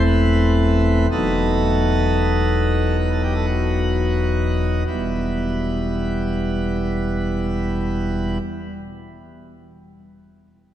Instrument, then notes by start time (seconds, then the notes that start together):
pipe organ
Already playing: E1 E2 E3 A3 C4
0.06 B4
1.11 E1 E2 F#3 B3 D#4 A4
3.00 B4
3.12 A4
3.23 G4
3.35 A4
3.47 F#4
4.87 E1 E2 B2 G3 B3 E4